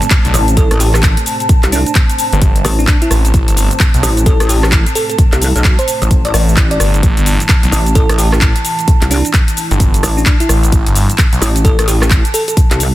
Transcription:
Already playing: analog synth pad A3 C4 C5, ambient pad A5
0.02 closed hi-hat, shaker
0.10 kick, clap, closed hi-hat, shaker
0.25 detuned saw bass B1, closed hi-hat, shaker
0.34 wobble bass A1, open hi-hat, shaker
0.48 closed hi-hat, shaker
0.57 fm electric piano A4, kick, closed hi-hat, shaker
0.71 wobble bass A1, cross-stick, closed hi-hat, shaker
0.80 fm electric piano G4, open hi-hat, shaker
0.94 fm electric piano G4, cross-stick, clap, shaker
1.03 kick, clap, closed hi-hat, shaker
1.17 closed hi-hat, shaker
1.26 open hi-hat, shaker
1.40 closed hi-hat, shaker
1.49 kick, closed hi-hat, shaker
1.63 wobble bass C2, clap, closed hi-hat, shaker
1.72 fm electric piano D4, open hi-hat, shaker
1.86 closed hi-hat, shaker
1.95 kick, clap, closed hi-hat, shaker
2.10 closed hi-hat, shaker
2.18 open hi-hat, shaker
2.33 detuned saw bass G1, closed hi-hat, shaker
2.42 kick, closed hi-hat, shaker
2.56 closed hi-hat, shaker
2.65 wobble bass A1, cross-stick, open hi-hat, shaker
2.79 fm electric piano D4, shaker
2.87 fm electric piano D4, kick, clap, closed hi-hat, shaker
3.02 fm electric piano E4, closed hi-hat, shaker
3.11 detuned saw bass A1, cross-stick, open hi-hat, shaker
3.25 closed hi-hat, shaker
3.34 detuned saw bass A1, kick, closed hi-hat, shaker
3.48 detuned saw bass G1, closed hi-hat, shaker
3.57 open hi-hat, shaker
3.71 closed hi-hat, shaker
3.80 kick, clap, closed hi-hat, shaker
3.94 detuned saw bass B1, closed hi-hat, shaker
4.03 wobble bass A1, open hi-hat, shaker
4.17 closed hi-hat, shaker
4.26 fm electric piano A4, kick, closed hi-hat, shaker
4.40 wobble bass A1, cross-stick, closed hi-hat, shaker
4.49 fm electric piano G4, open hi-hat, shaker
4.63 fm electric piano G4, cross-stick, clap, shaker
4.72 kick, clap, closed hi-hat, shaker
4.86 closed hi-hat, shaker
4.95 fm electric piano A4, open hi-hat, shaker
5.10 fm electric piano A4, closed hi-hat, shaker
5.18 kick, closed hi-hat, shaker
5.32 wobble bass C2, clap, closed hi-hat, shaker
5.42 open hi-hat, shaker
5.56 wobble bass B1, closed hi-hat, shaker
5.64 kick, clap, closed hi-hat, shaker
5.79 fm electric piano C5, closed hi-hat, shaker
5.88 open hi-hat, shaker
6.02 wobble bass A1, closed hi-hat, shaker
6.11 kick, closed hi-hat, shaker
6.25 fm electric piano D5, closed hi-hat, shaker
6.34 detuned saw bass A1, fm electric piano D5, cross-stick, open hi-hat, shaker
6.49 shaker
6.57 wobble bass A1, kick, clap, closed hi-hat, shaker
6.71 fm electric piano D5, closed hi-hat, shaker
6.80 detuned saw bass G1, cross-stick, open hi-hat, shaker
6.94 closed hi-hat, shaker
7.03 detuned saw bass A1, analog synth pad E4, kick, closed hi-hat, shaker
7.17 detuned saw bass G1, closed hi-hat, shaker
7.26 open hi-hat, shaker
7.40 closed hi-hat, shaker
7.49 kick, clap, closed hi-hat, shaker
7.63 detuned saw bass B1, closed hi-hat, shaker
7.72 wobble bass A1, open hi-hat, shaker
7.86 closed hi-hat, shaker
7.95 fm electric piano A4, kick, closed hi-hat, shaker
8.09 wobble bass A1, cross-stick, closed hi-hat, shaker
8.18 fm electric piano G4, open hi-hat, shaker
8.32 fm electric piano G4, cross-stick, clap, shaker
8.41 kick, clap, closed hi-hat, shaker
8.56 closed hi-hat, shaker
8.65 open hi-hat, shaker
8.79 closed hi-hat, shaker
8.88 kick, closed hi-hat, shaker
9.01 wobble bass C2, clap, closed hi-hat, shaker
9.11 fm electric piano D4, open hi-hat, shaker
9.25 closed hi-hat, shaker
9.33 kick, clap, closed hi-hat, shaker
9.48 closed hi-hat, shaker
9.57 open hi-hat, shaker
9.71 detuned saw bass G1, closed hi-hat, shaker
9.80 kick, closed hi-hat, shaker
9.94 closed hi-hat, shaker
10.03 wobble bass A1, cross-stick, open hi-hat, shaker
10.17 fm electric piano D4, shaker
10.26 fm electric piano D4, kick, clap, closed hi-hat, shaker
10.40 fm electric piano E4, closed hi-hat, shaker
10.49 detuned saw bass A1, cross-stick, open hi-hat, shaker
10.63 closed hi-hat, shaker
10.72 detuned saw bass A1, kick, closed hi-hat, shaker
10.86 detuned saw bass G1, closed hi-hat, shaker
10.95 open hi-hat, shaker
11.10 closed hi-hat, shaker
11.18 kick, clap, closed hi-hat, shaker
11.33 detuned saw bass B1, closed hi-hat, shaker
11.42 wobble bass A1, open hi-hat, shaker
11.56 closed hi-hat, shaker
11.65 fm electric piano A4, kick, closed hi-hat, shaker
11.79 wobble bass A1, cross-stick, closed hi-hat, shaker
11.88 fm electric piano G4, open hi-hat, shaker
12.01 fm electric piano G4, cross-stick, clap, shaker
12.10 kick, clap, closed hi-hat, shaker
12.25 closed hi-hat, shaker
12.34 fm electric piano A4, open hi-hat, shaker
12.48 fm electric piano A4, closed hi-hat, shaker
12.57 kick, closed hi-hat, shaker
12.71 wobble bass C2, clap, closed hi-hat, shaker
12.80 open hi-hat, shaker

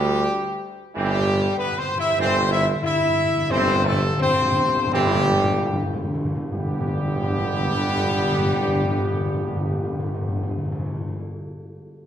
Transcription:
Already playing: tuba D2, french horn section G3, trumpet section G4
0.95 tuba G1, timpani G2, trombone section E3 C4, french horn section G3, trumpet section G4
1.05 timpani G2
1.12 timpani G2
1.20 timpani G2
1.27 timpani G2
1.34 timpani G2
1.42 timpani G2
1.49 timpani G2
1.57 french horn section B3, trumpet section B4
1.65 timpani G2
1.72 timpani G2
1.77 timpani G2, french horn section C4, trumpet section C5
1.88 timpani G2
1.95 timpani G2, french horn section E4
2.01 timpani G2, trumpet section E5
2.11 timpani G2
2.18 tuba G1, timpani G2, trombone section E3 C4, french horn section C4, trumpet section C5
2.27 timpani G2
2.35 timpani G2
2.42 timpani G2
2.50 timpani G2, french horn section E4, trumpet section E5
2.59 timpani G2
2.67 timpani G2
2.75 timpani G2
2.83 timpani G2, french horn section E4, trumpet section E5
2.92 timpani G2
3.00 timpani G2
3.09 timpani G2
3.17 timpani G2
3.25 timpani G2
3.34 timpani G2
3.42 timpani G2
3.49 tuba G1, timpani G2, trombone section E3 C4, french horn section C4, trumpet section C5
3.58 timpani G2
3.66 timpani G2
3.75 timpani G2
3.83 timpani G2, french horn section A3, trumpet section A4
3.92 timpani G2
3.99 timpani G2
4.08 timpani G2
4.17 timpani G2, french horn section C4
4.22 timpani G2, trumpet section C5
4.34 timpani G2
4.42 timpani G2
4.52 timpani G2
4.60 timpani G2
4.69 timpani G2
4.78 timpani G2
4.87 timpani G2
4.91 tuba G1, trombone section E3 C4, french horn section G3, trumpet section G4
4.96 timpani G2
5.06 timpani G2
5.14 timpani G2
5.24 timpani G2
5.34 timpani G2
5.44 timpani G2
5.53 timpani G2
5.62 timpani G2
5.73 timpani G2
5.83 timpani G2
5.93 timpani G2
6.03 timpani G2
6.14 timpani G2
6.24 timpani G2
6.35 timpani G2
6.50 tuba G1, timpani G2, trombone section D3 B3, french horn section G3, trumpet section G4
6.59 timpani G2
6.66 timpani G2
6.74 timpani G2
6.81 timpani G2
6.87 timpani G2
6.95 timpani G2
7.02 timpani G2
7.09 timpani G2
7.16 timpani G2
7.23 timpani G2
7.30 timpani G2
7.38 timpani G2
7.45 timpani G2
7.53 timpani G2
7.60 timpani G2
7.68 timpani G2
7.75 timpani G2
7.82 timpani G2
7.90 timpani G2
7.96 timpani G2
8.04 timpani G2
8.11 timpani G2
8.18 timpani G2
8.25 timpani G2
8.32 timpani G2
8.39 timpani G2
8.46 timpani G2
8.54 timpani G2
8.60 timpani G2
8.68 timpani G2
8.76 timpani G2
8.84 timpani G2
8.91 timpani G2
8.98 timpani G2
9.05 timpani G2
9.13 timpani G2
9.20 timpani G2
9.27 timpani G2
9.34 timpani G2
9.41 timpani G2
9.49 timpani G2
9.56 timpani G2
9.63 timpani G2
9.71 timpani G2
9.78 timpani G2
9.85 timpani G2
9.92 timpani G2
9.99 timpani G2
10.06 timpani G2
10.14 timpani G2
10.21 timpani G2
10.28 timpani G2
10.36 timpani G2
10.43 timpani G2
10.51 timpani G2
10.58 timpani G2
10.65 timpani G2
10.72 timpani G2
10.79 timpani G2
10.86 timpani G2
10.94 timpani G2
11.01 timpani G2
11.08 timpani G2

